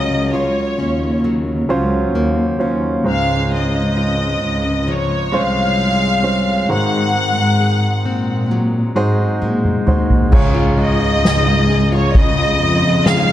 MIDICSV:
0, 0, Header, 1, 6, 480
1, 0, Start_track
1, 0, Key_signature, -5, "major"
1, 0, Tempo, 909091
1, 1615, Time_signature, 4, 2, 24, 8
1, 7035, End_track
2, 0, Start_track
2, 0, Title_t, "Violin section"
2, 0, Program_c, 0, 48
2, 0, Note_on_c, 0, 75, 72
2, 155, Note_off_c, 0, 75, 0
2, 178, Note_on_c, 0, 73, 63
2, 656, Note_off_c, 0, 73, 0
2, 1637, Note_on_c, 0, 77, 78
2, 1849, Note_off_c, 0, 77, 0
2, 1878, Note_on_c, 0, 75, 69
2, 2586, Note_off_c, 0, 75, 0
2, 2594, Note_on_c, 0, 73, 70
2, 2824, Note_off_c, 0, 73, 0
2, 2830, Note_on_c, 0, 77, 92
2, 3542, Note_off_c, 0, 77, 0
2, 3547, Note_on_c, 0, 78, 91
2, 4480, Note_off_c, 0, 78, 0
2, 5705, Note_on_c, 0, 75, 83
2, 6278, Note_off_c, 0, 75, 0
2, 6305, Note_on_c, 0, 73, 75
2, 6413, Note_on_c, 0, 75, 94
2, 6420, Note_off_c, 0, 73, 0
2, 6894, Note_off_c, 0, 75, 0
2, 6897, Note_on_c, 0, 77, 97
2, 7035, Note_off_c, 0, 77, 0
2, 7035, End_track
3, 0, Start_track
3, 0, Title_t, "Grand piano"
3, 0, Program_c, 1, 0
3, 0, Control_c, 1, 64, 127
3, 0, Note_on_c, 1, 49, 46
3, 0, Note_on_c, 1, 54, 57
3, 0, Note_on_c, 1, 61, 51
3, 0, Note_on_c, 1, 65, 51
3, 0, Note_on_c, 1, 70, 58
3, 392, Note_off_c, 1, 49, 0
3, 602, Note_off_c, 1, 54, 0
3, 603, Note_off_c, 1, 61, 0
3, 605, Note_off_c, 1, 65, 0
3, 606, Note_off_c, 1, 70, 0
3, 892, Note_on_c, 1, 54, 78
3, 893, Note_on_c, 1, 61, 68
3, 897, Note_on_c, 1, 65, 72
3, 899, Note_on_c, 1, 72, 81
3, 1349, Note_off_c, 1, 54, 0
3, 1350, Note_off_c, 1, 61, 0
3, 1352, Note_off_c, 1, 65, 0
3, 1352, Note_off_c, 1, 72, 0
3, 1367, Note_on_c, 1, 54, 58
3, 1371, Note_on_c, 1, 61, 61
3, 1372, Note_on_c, 1, 65, 55
3, 1374, Note_on_c, 1, 72, 60
3, 1599, Note_off_c, 1, 54, 0
3, 1601, Note_off_c, 1, 61, 0
3, 1601, Note_off_c, 1, 65, 0
3, 1602, Note_off_c, 1, 72, 0
3, 1606, Note_on_c, 1, 56, 62
3, 1609, Note_on_c, 1, 61, 54
3, 1613, Note_on_c, 1, 44, 47
3, 1614, Note_on_c, 1, 65, 47
3, 1614, Note_on_c, 1, 72, 63
3, 1622, Control_c, 1, 64, 0
3, 1724, Control_c, 1, 64, 127
3, 2312, Note_off_c, 1, 44, 0
3, 2522, Note_off_c, 1, 56, 0
3, 2524, Note_off_c, 1, 61, 0
3, 2526, Note_off_c, 1, 65, 0
3, 2526, Note_off_c, 1, 72, 0
3, 2810, Note_on_c, 1, 56, 67
3, 2816, Note_on_c, 1, 61, 55
3, 2817, Note_on_c, 1, 65, 58
3, 2820, Note_on_c, 1, 72, 72
3, 3268, Note_off_c, 1, 56, 0
3, 3271, Note_off_c, 1, 61, 0
3, 3272, Note_off_c, 1, 65, 0
3, 3273, Note_off_c, 1, 72, 0
3, 3288, Note_on_c, 1, 56, 55
3, 3293, Note_on_c, 1, 61, 47
3, 3295, Note_on_c, 1, 65, 51
3, 3295, Note_on_c, 1, 72, 56
3, 3519, Note_off_c, 1, 56, 0
3, 3521, Note_off_c, 1, 61, 0
3, 3523, Note_off_c, 1, 65, 0
3, 3523, Note_off_c, 1, 72, 0
3, 3531, Note_on_c, 1, 56, 56
3, 3532, Note_on_c, 1, 63, 52
3, 3534, Note_on_c, 1, 44, 52
3, 3534, Note_on_c, 1, 51, 51
3, 3536, Note_on_c, 1, 66, 49
3, 3539, Note_on_c, 1, 72, 57
3, 3542, Control_c, 1, 64, 0
3, 3646, Control_c, 1, 64, 127
3, 4233, Note_off_c, 1, 44, 0
3, 4233, Note_off_c, 1, 51, 0
3, 4445, Note_off_c, 1, 56, 0
3, 4445, Note_off_c, 1, 63, 0
3, 4447, Note_off_c, 1, 66, 0
3, 4449, Note_off_c, 1, 72, 0
3, 4729, Note_on_c, 1, 56, 67
3, 4732, Note_on_c, 1, 63, 67
3, 4734, Note_on_c, 1, 72, 81
3, 4735, Note_on_c, 1, 66, 66
3, 5187, Note_off_c, 1, 56, 0
3, 5189, Note_off_c, 1, 63, 0
3, 5190, Note_off_c, 1, 72, 0
3, 5191, Note_off_c, 1, 66, 0
3, 5209, Note_on_c, 1, 56, 60
3, 5211, Note_on_c, 1, 63, 52
3, 5217, Note_on_c, 1, 66, 51
3, 5217, Note_on_c, 1, 72, 67
3, 5440, Note_off_c, 1, 56, 0
3, 5441, Note_off_c, 1, 63, 0
3, 5443, Note_off_c, 1, 66, 0
3, 5444, Note_off_c, 1, 72, 0
3, 5448, Note_on_c, 1, 65, 75
3, 5452, Note_on_c, 1, 68, 67
3, 5453, Note_on_c, 1, 44, 68
3, 5457, Note_on_c, 1, 73, 87
3, 5462, Control_c, 1, 64, 0
3, 5555, Control_c, 1, 64, 127
3, 6152, Note_off_c, 1, 44, 0
3, 6363, Note_off_c, 1, 65, 0
3, 6365, Note_off_c, 1, 68, 0
3, 6368, Note_off_c, 1, 73, 0
3, 7035, End_track
4, 0, Start_track
4, 0, Title_t, "Steel-string acoustic guitar"
4, 0, Program_c, 2, 25
4, 0, Note_on_c, 2, 49, 59
4, 0, Note_on_c, 2, 53, 58
4, 0, Note_on_c, 2, 61, 50
4, 0, Note_on_c, 2, 65, 53
4, 175, Note_off_c, 2, 65, 0
4, 177, Note_on_c, 2, 65, 53
4, 413, Note_off_c, 2, 61, 0
4, 415, Note_on_c, 2, 61, 45
4, 584, Note_off_c, 2, 53, 0
4, 657, Note_on_c, 2, 54, 60
4, 895, Note_off_c, 2, 65, 0
4, 897, Note_on_c, 2, 65, 52
4, 1137, Note_on_c, 2, 58, 55
4, 1374, Note_off_c, 2, 61, 0
4, 1377, Note_on_c, 2, 61, 45
4, 1616, Note_off_c, 2, 49, 0
4, 1664, Note_off_c, 2, 54, 0
4, 1664, Note_off_c, 2, 58, 0
4, 1855, Note_off_c, 2, 61, 0
4, 1857, Note_on_c, 2, 60, 49
4, 2094, Note_off_c, 2, 65, 0
4, 2096, Note_on_c, 2, 65, 52
4, 2577, Note_on_c, 2, 53, 58
4, 2809, Note_off_c, 2, 65, 0
4, 2815, Note_on_c, 2, 65, 53
4, 3056, Note_on_c, 2, 56, 53
4, 3293, Note_off_c, 2, 60, 0
4, 3295, Note_on_c, 2, 60, 50
4, 3538, Note_on_c, 2, 44, 63
4, 3583, Note_off_c, 2, 65, 0
4, 3584, Note_off_c, 2, 53, 0
4, 3772, Note_off_c, 2, 60, 0
4, 3774, Note_on_c, 2, 60, 48
4, 4013, Note_on_c, 2, 68, 57
4, 4246, Note_off_c, 2, 60, 0
4, 4252, Note_on_c, 2, 60, 50
4, 4495, Note_on_c, 2, 54, 60
4, 4510, Note_off_c, 2, 56, 0
4, 4729, Note_off_c, 2, 68, 0
4, 4731, Note_on_c, 2, 68, 50
4, 4972, Note_on_c, 2, 56, 54
4, 5205, Note_off_c, 2, 60, 0
4, 5211, Note_on_c, 2, 60, 43
4, 5450, Note_on_c, 2, 49, 79
4, 5452, Note_off_c, 2, 68, 0
4, 5454, Note_on_c, 2, 68, 56
4, 5456, Note_off_c, 2, 44, 0
4, 5501, Note_off_c, 2, 60, 0
4, 5502, Note_off_c, 2, 54, 0
4, 5569, Note_on_c, 2, 65, 55
4, 5686, Note_off_c, 2, 56, 0
4, 5688, Note_on_c, 2, 56, 57
4, 5808, Note_off_c, 2, 65, 0
4, 5814, Note_on_c, 2, 65, 52
4, 5935, Note_off_c, 2, 56, 0
4, 5937, Note_on_c, 2, 56, 59
4, 6048, Note_off_c, 2, 65, 0
4, 6054, Note_on_c, 2, 65, 58
4, 6174, Note_off_c, 2, 68, 0
4, 6176, Note_on_c, 2, 68, 61
4, 6288, Note_off_c, 2, 65, 0
4, 6295, Note_on_c, 2, 65, 58
4, 6410, Note_off_c, 2, 49, 0
4, 6416, Note_on_c, 2, 49, 84
4, 6419, Note_off_c, 2, 68, 0
4, 6421, Note_on_c, 2, 68, 64
4, 6532, Note_off_c, 2, 65, 0
4, 6538, Note_on_c, 2, 65, 61
4, 6654, Note_off_c, 2, 56, 0
4, 6657, Note_on_c, 2, 56, 55
4, 6772, Note_off_c, 2, 65, 0
4, 6779, Note_on_c, 2, 65, 61
4, 6895, Note_off_c, 2, 56, 0
4, 6897, Note_on_c, 2, 56, 67
4, 7011, Note_off_c, 2, 65, 0
4, 7017, Note_on_c, 2, 65, 55
4, 7035, Note_off_c, 2, 49, 0
4, 7035, Note_off_c, 2, 56, 0
4, 7035, Note_off_c, 2, 65, 0
4, 7035, Note_off_c, 2, 68, 0
4, 7035, End_track
5, 0, Start_track
5, 0, Title_t, "Cello section"
5, 0, Program_c, 3, 48
5, 62, Note_on_c, 3, 37, 79
5, 282, Note_off_c, 3, 37, 0
5, 415, Note_on_c, 3, 39, 73
5, 874, Note_off_c, 3, 39, 0
5, 899, Note_on_c, 3, 37, 88
5, 1120, Note_off_c, 3, 37, 0
5, 1139, Note_on_c, 3, 39, 73
5, 1360, Note_off_c, 3, 39, 0
5, 1375, Note_on_c, 3, 39, 70
5, 1598, Note_off_c, 3, 39, 0
5, 1618, Note_on_c, 3, 37, 79
5, 2315, Note_off_c, 3, 37, 0
5, 2339, Note_on_c, 3, 37, 82
5, 2676, Note_off_c, 3, 37, 0
5, 2815, Note_on_c, 3, 36, 72
5, 3513, Note_off_c, 3, 36, 0
5, 3539, Note_on_c, 3, 44, 83
5, 3876, Note_off_c, 3, 44, 0
5, 3898, Note_on_c, 3, 44, 79
5, 4119, Note_off_c, 3, 44, 0
5, 4254, Note_on_c, 3, 46, 71
5, 4713, Note_off_c, 3, 46, 0
5, 4737, Note_on_c, 3, 44, 84
5, 4959, Note_off_c, 3, 44, 0
5, 4977, Note_on_c, 3, 46, 65
5, 5199, Note_off_c, 3, 46, 0
5, 5215, Note_on_c, 3, 39, 68
5, 5438, Note_off_c, 3, 39, 0
5, 5454, Note_on_c, 3, 37, 92
5, 6633, Note_off_c, 3, 37, 0
5, 6655, Note_on_c, 3, 41, 97
5, 7035, Note_off_c, 3, 41, 0
5, 7035, End_track
6, 0, Start_track
6, 0, Title_t, "Drums"
6, 4976, Note_on_c, 9, 48, 42
6, 5029, Note_off_c, 9, 48, 0
6, 5093, Note_on_c, 9, 47, 47
6, 5146, Note_off_c, 9, 47, 0
6, 5213, Note_on_c, 9, 45, 68
6, 5266, Note_off_c, 9, 45, 0
6, 5333, Note_on_c, 9, 43, 77
6, 5386, Note_off_c, 9, 43, 0
6, 5451, Note_on_c, 9, 49, 105
6, 5454, Note_on_c, 9, 36, 112
6, 5503, Note_off_c, 9, 49, 0
6, 5507, Note_off_c, 9, 36, 0
6, 5693, Note_on_c, 9, 51, 51
6, 5746, Note_off_c, 9, 51, 0
6, 5937, Note_on_c, 9, 51, 70
6, 5941, Note_on_c, 9, 38, 103
6, 5990, Note_off_c, 9, 51, 0
6, 5993, Note_off_c, 9, 38, 0
6, 6179, Note_on_c, 9, 51, 45
6, 6232, Note_off_c, 9, 51, 0
6, 6414, Note_on_c, 9, 36, 98
6, 6416, Note_on_c, 9, 51, 83
6, 6467, Note_off_c, 9, 36, 0
6, 6468, Note_off_c, 9, 51, 0
6, 6651, Note_on_c, 9, 51, 52
6, 6704, Note_off_c, 9, 51, 0
6, 6773, Note_on_c, 9, 51, 41
6, 6826, Note_off_c, 9, 51, 0
6, 6894, Note_on_c, 9, 51, 61
6, 6895, Note_on_c, 9, 38, 109
6, 6947, Note_off_c, 9, 51, 0
6, 6948, Note_off_c, 9, 38, 0
6, 7035, End_track
0, 0, End_of_file